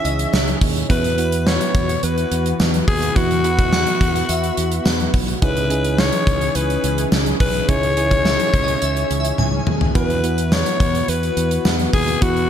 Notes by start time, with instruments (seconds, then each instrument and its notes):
Already playing: analog synth pad E3 C#4 G#4, synth keys C#4 D#4 E4 G#4 C#5, alto saxophone E5
0.05 fingered electric bass C#2, synth bell D#5, closed hi-hat
0.19 closed hi-hat
0.33 fingered electric bass C#2, synth bell C#5, snare, tambourine
0.48 closed hi-hat
0.61 fingered electric bass D#2, kick, open hi-hat
0.76 closed hi-hat
0.89 fingered electric bass E2, analog synth pad E3 B3 F#4, synth keys B3 E4 F#4 B4, alto saxophone B4, kick, closed hi-hat
1.04 closed hi-hat
1.17 synth keys B3 E4 F#4 B4, closed hi-hat
1.32 closed hi-hat
1.47 alto saxophone C#5, snare, tambourine
1.61 closed hi-hat
1.75 fingered electric bass E2, kick, closed hi-hat
1.89 closed hi-hat
2.03 fingered electric bass E2, alto saxophone B4, closed hi-hat
2.18 closed hi-hat
2.31 fingered electric bass E2, closed hi-hat
2.46 closed hi-hat
2.60 fingered electric bass E2, snare, tambourine
2.74 closed hi-hat
2.88 fingered electric bass D#2, alto saxophone G#4, kick, open hi-hat
3.02 closed hi-hat
3.15 fingered electric bass E2, synth keys B3 E4 F#4 B4, alto saxophone F#4, kick, closed hi-hat
3.31 closed hi-hat
3.44 synth keys B3 E4 F#4 B4, closed hi-hat
3.59 kick, closed hi-hat
3.73 synth bell F#5, snare, tambourine
3.87 closed hi-hat
4.01 fingered electric bass E2, kick, closed hi-hat
4.16 closed hi-hat
4.29 fingered electric bass E2, synth bell E5, closed hi-hat
4.44 closed hi-hat
4.57 fingered electric bass E2, closed hi-hat
4.72 closed hi-hat
4.85 fingered electric bass E2, synth bell F#5, snare, tambourine
5.00 closed hi-hat
5.14 fingered electric bass B1, kick, open hi-hat
5.28 closed hi-hat
5.42 fingered electric bass C#2, analog synth pad E3 C#4 G#4, synth keys C#4 D#4 E4 G#4, alto saxophone B4, kick, closed hi-hat
5.57 closed hi-hat
5.69 synth keys C#4 D#4 E4 G#4, closed hi-hat
5.84 closed hi-hat
5.98 alto saxophone C#5, snare, tambourine
6.12 closed hi-hat
6.27 fingered electric bass C#2, kick, closed hi-hat
6.41 closed hi-hat
6.55 fingered electric bass C#2, alto saxophone B4, closed hi-hat
6.70 closed hi-hat
6.84 fingered electric bass C#2, closed hi-hat
6.98 closed hi-hat
7.12 fingered electric bass C#2, snare, tambourine
7.26 closed hi-hat
7.40 fingered electric bass B1, alto saxophone B4, kick, open hi-hat
7.55 closed hi-hat
7.68 fingered electric bass C#2, synth keys C#4 D#4 E4 G#4, alto saxophone C#5, kick, closed hi-hat
7.83 closed hi-hat
7.96 synth keys C#4 E4 G#4, closed hi-hat
8.11 kick, closed hi-hat
8.25 synth bell E5, snare, tambourine
8.40 closed hi-hat
8.54 fingered electric bass C#2, kick, closed hi-hat
8.63 synth bell D#5
8.68 closed hi-hat
8.82 fingered electric bass C#2, synth bell E5, closed hi-hat
8.97 closed hi-hat
9.10 fingered electric bass C#2, closed hi-hat
9.20 synth bell E5
9.25 closed hi-hat
9.38 fingered electric bass C#2, synth bell G#5, high tom
9.67 fingered electric bass D#2, mid tom
9.81 floor tom
9.95 fingered electric bass E2, analog synth pad E3 B3 F#4, synth keys B3 E4 F#4 B4, alto saxophone B4, kick, closed hi-hat
10.10 closed hi-hat
10.23 synth keys B3 E4 F#4 B4, closed hi-hat
10.38 closed hi-hat
10.52 alto saxophone C#5, snare, tambourine
10.66 closed hi-hat
10.80 fingered electric bass E2, kick, closed hi-hat
10.95 closed hi-hat
11.08 fingered electric bass E2, alto saxophone B4, closed hi-hat
11.23 closed hi-hat
11.37 fingered electric bass E2, closed hi-hat
11.51 closed hi-hat
11.65 fingered electric bass E2, snare, tambourine
11.79 closed hi-hat
11.93 fingered electric bass D#2, alto saxophone G#4, kick, open hi-hat
12.08 closed hi-hat
12.21 fingered electric bass E2, synth keys B3 E4 F#4 B4, alto saxophone F#4, kick, closed hi-hat
12.37 closed hi-hat